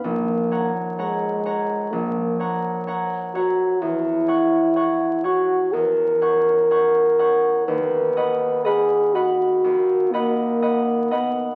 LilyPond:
<<
  \new Staff \with { instrumentName = "Harp" } { \time 4/4 \key fis \mixolydian \tempo 4 = 62 ais,,8 <cis'' fis'' ais''>8 <cis'' fis'' ais''>8 <cis'' fis'' ais''>8 ais,,8 <cis'' fis'' ais''>8 <cis'' fis'' ais''>8 <cis'' fis'' ais''>8 | e,8 <cis'' fis'' cis'''>8 <cis'' fis'' cis'''>8 <cis'' fis'' cis'''>8 e,8 <cis'' fis'' cis'''>8 <cis'' fis'' cis'''>8 <cis'' fis'' cis'''>8 | dis,8 <dis'' fis'' b''>8 <dis'' fis'' b''>8 <dis'' fis'' b''>8 dis,8 <dis'' fis'' b''>8 <dis'' fis'' b''>8 <dis'' fis'' b''>8 | }
  \new Staff \with { instrumentName = "French horn" } { \time 4/4 \key fis \mixolydian ais8 r8 gis4 ais8 r4 fis'8 | e'4. fis'8 ais'2 | b'4 gis'8 fis'4 ais4 b8 | }
>>